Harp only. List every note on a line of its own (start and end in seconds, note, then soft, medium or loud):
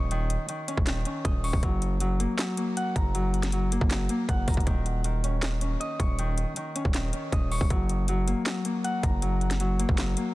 0.00 0.10 D#3 medium
0.00 1.24 A#3 medium
0.00 0.68 C#4 medium
0.00 1.24 D#5 loud
0.00 1.18 C#6 medium
0.11 0.48 D#3 loud
0.49 0.86 D#3 medium
0.68 1.05 C#4 medium
0.87 1.68 D#3 medium
1.06 3.96 C#4 medium
1.25 3.03 D#5 medium
1.44 2.70 C#6 loud
1.63 2.00 F#3 medium
2.01 2.37 F#3 medium
2.20 2.57 A#3 medium
2.39 3.13 F#3 medium
2.58 3.72 A#3 medium
2.77 4.29 F#5 loud
2.96 4.36 A#5 medium
3.15 3.52 F#3 loud
3.53 3.90 F#3 medium
3.72 4.10 A#3 medium
3.91 4.72 F#3 medium
4.10 7.32 A#3 medium
4.29 5.90 F#5 medium
4.48 5.88 A#5 loud
4.67 5.04 D#3 loud
5.05 5.42 D#3 medium
5.24 5.61 C#4 medium
5.62 6.75 C#4 medium
5.80 7.32 D#5 loud
5.99 7.25 C#6 medium
6.19 6.55 D#3 loud
6.57 6.93 D#3 medium
6.76 7.13 C#4 medium
6.95 7.75 D#3 medium
7.13 10.03 C#4 medium
7.32 9.11 D#5 medium
7.51 8.77 C#6 loud
7.70 8.07 F#3 medium
8.09 8.45 F#3 medium
8.27 8.65 A#3 medium
8.46 9.21 F#3 medium
8.65 9.79 A#3 medium
8.84 10.34 F#5 loud
9.03 10.34 A#5 medium
9.22 9.59 F#3 loud
9.60 9.97 F#3 medium
9.79 10.17 A#3 medium
9.98 10.34 F#3 medium
10.18 10.34 A#3 medium